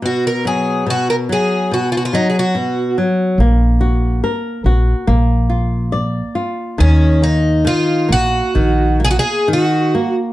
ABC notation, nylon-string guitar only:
X:1
M:4/4
L:1/8
Q:1/4=70
K:Ebm
V:1 name="Nylon-string guitar" clef=bass
=B,, ^F, B,, F, B,, F, B,, F, | B, G B G B, F =d F | E, B, E, B, E, B, E, B, |]